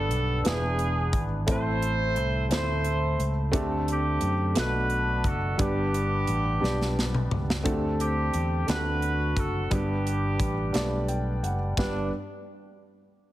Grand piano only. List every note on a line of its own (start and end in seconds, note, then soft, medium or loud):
0.00 0.42 G2 medium
0.00 0.22 B3 medium
0.00 0.22 D4 medium
0.00 0.22 G4 medium
0.00 0.23 B4 medium
0.00 0.23 D5 medium
0.44 1.44 E3 medium
0.44 1.24 B3 medium
0.44 1.24 D4 medium
0.44 1.25 E4 medium
0.44 1.25 G#4 soft
0.44 1.25 B4 medium
1.47 2.46 A2 medium
1.47 2.27 A3 medium
1.47 2.27 C4 medium
1.47 2.27 E4 medium
1.47 2.27 A4 medium
1.47 2.28 C5 medium
2.49 3.29 A3 medium
2.49 3.30 C4 medium
2.49 3.30 E4 medium
2.49 3.30 A4 medium
2.49 3.31 C5 medium
3.52 4.52 D3 medium
3.52 4.32 A3 medium
3.52 4.32 C4 medium
3.52 4.33 D4 medium
3.52 4.33 G4 medium
3.52 4.33 A4 medium
4.55 5.55 B2 medium
4.55 5.35 A3 medium
4.55 5.35 B3 medium
4.55 5.36 D4 medium
4.55 5.36 F#4 medium
4.55 5.36 A4 medium
5.58 6.58 G2 medium
5.58 6.38 G3 medium
5.58 6.38 B3 medium
5.58 6.39 D4 medium
5.58 6.39 G4 medium
5.58 6.39 B4 medium
6.61 7.41 G3 medium
6.61 7.41 B3 medium
6.61 7.42 D4 medium
6.61 7.42 G4 medium
6.61 7.42 D5 medium
7.63 8.64 D3 medium
7.63 8.44 A3 medium
7.63 8.44 C4 medium
7.63 8.45 D4 medium
7.63 7.72 F#4 medium
7.63 8.45 A4 medium
7.71 8.48 G4 medium
8.67 9.67 D3 medium
8.67 9.47 A3 medium
8.67 9.48 C4 soft
8.67 9.48 D4 soft
8.67 9.48 F#4 soft
8.67 8.75 G4 soft
8.76 9.52 A4 medium
9.70 10.71 G2 medium
9.70 10.51 G3 medium
9.70 10.51 B3 medium
9.70 10.51 D4 medium
9.70 10.51 G4 medium
9.70 10.52 B4 medium
10.73 11.53 G3 medium
10.73 10.80 A3 soft
10.73 11.54 D4 medium
10.73 11.55 G4 medium
10.73 11.55 D5 medium
10.80 11.57 B3 medium
11.09 11.41 G5 medium
11.43 11.75 F#5 medium
11.78 12.10 G2 medium
11.78 12.10 G3 medium
11.78 12.10 B3 medium
11.78 12.10 D4 medium
11.78 12.10 G4 medium
11.78 12.10 B4 medium